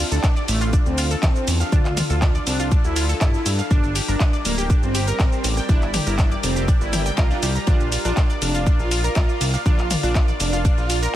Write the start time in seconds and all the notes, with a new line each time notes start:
Already playing: D4 F4 A4
0.12 D2 D4 A4 A5, ride, shaker
0.24 D4 D5, kick, snare, clap, ride, shaker
0.36 D5 D6, shaker
0.48 A1 A3, open hi-hat, ride, shaker
0.61 F4 F5, shaker
0.73 D4 D5, kick, ride, shaker
0.86 D2 C4, shaker
0.98 F4 F5, open hi-hat, ride, shaker
1.11 A4 A5, ride, shaker
1.23 E2 C4 A4 A5, kick, snare, clap, ride, shaker
1.36 shaker
1.48 E2, open hi-hat, ride, shaker
1.60 F5 F6, snare, shaker
1.72 D2 D4 F4 D5, kick, mid tom, ride, shaker
1.85 clap, shaker
1.97 F4 F5, open hi-hat, mid tom, ride, shaker
2.10 D2 F4 A4 A5, shaker
2.22 D4 D5, kick, snare, clap, ride, shaker
2.35 D5 D6, shaker
2.47 C2 D4, open hi-hat, ride, shaker
2.60 F4 F5, shaker
2.72 D4 D5, kick, ride, shaker
2.84 D2 E4, shaker
2.96 F4 F5, open hi-hat, ride, shaker
3.09 A4 A5, snare, shaker
3.21 G2 E4 A4 A5, kick, snare, clap, ride, shaker
3.34 snare, shaker
3.46 G2, open hi-hat, ride, shaker
3.59 F5 F6, snare, shaker
3.71 G1 G3 D4 G4 A#4 D5, kick, mid tom, ride, shaker
3.83 ride, shaker
3.95 G4 G5, open hi-hat, ride, shaker
4.08 G1 D4 A#4 A#5, ride, shaker
4.20 D4 D5, kick, snare, clap, ride, shaker
4.33 D5 D6, shaker
4.45 D1 A#3, open hi-hat, ride, shaker
4.58 G4 G5, shaker
4.70 D4 D5, kick, ride, shaker
4.83 G1 C4, shaker
4.95 G4 G5, open hi-hat, ride, shaker
5.07 A#4 A#5, ride, shaker
5.19 A1 C4 A#4 A#5, kick, snare, clap, ride, shaker
5.32 shaker
5.44 A1, open hi-hat, ride, shaker
5.57 G5 G6, snare, shaker
5.69 G1 D4 E4 D5, kick, mid tom, ride, shaker
5.82 clap, shaker
5.94 G4 G5, open hi-hat, mid tom, ride, shaker
6.07 G1 E4 A#4 A#5, shaker
6.18 D4 D5, kick, snare, clap, ride, shaker
6.31 D5 D6, shaker
6.43 F1 C4, open hi-hat, ride, shaker
6.56 G4 G5, shaker
6.68 D4 D5, kick, ride, shaker
6.81 G1 E4, shaker
6.93 G5 G6, open hi-hat, mid tom, ride, shaker
7.06 G5 G6, snare, shaker
7.17 C2 F4 A#4 A#5, kick, snare, clap, ride, shaker
7.31 D4 D5, snare, shaker
7.43 C2 G4 G5, open hi-hat, ride, shaker
7.55 A#5 A#6, snare, shaker
7.67 A#1 A#3 D4 F4 D5 F5, kick, mid tom, ride, shaker
7.80 ride, shaker
7.92 F4 F5, open hi-hat, ride, shaker
8.05 A#1 D4 F4 D5, ride, shaker
8.17 D4 D5, kick, snare, clap, ride, shaker
8.30 D5 D6, shaker
8.42 F1 D4, open hi-hat, ride, shaker
8.55 F4 F5, shaker
8.67 D4 D5, kick, ride, shaker
8.79 A#1 F4, shaker
8.91 F4 F5, open hi-hat, ride, shaker
9.04 A#4 A#5, ride, shaker
9.15 C2 F4 A#4 A#5, kick, snare, clap, ride, shaker
9.29 shaker
9.41 C2, open hi-hat, ride, shaker
9.53 F5 F6, snare, shaker
9.66 A#1 D4 F4 D5, kick, mid tom, ride, shaker
9.79 clap, shaker
9.90 F4 F5, open hi-hat, mid tom, ride, shaker
10.03 A#1 D4 F4 D5, shaker
10.15 D4 D5, kick, snare, clap, ride, shaker
10.28 D5 D6, shaker
10.40 F1 D4, open hi-hat, ride, shaker
10.53 F4 F5, shaker
10.65 D4 D5, kick, ride, shaker
10.78 A#1 F4, shaker
10.90 F4 F5, open hi-hat, ride, shaker
11.02 A#4 A#5, snare, shaker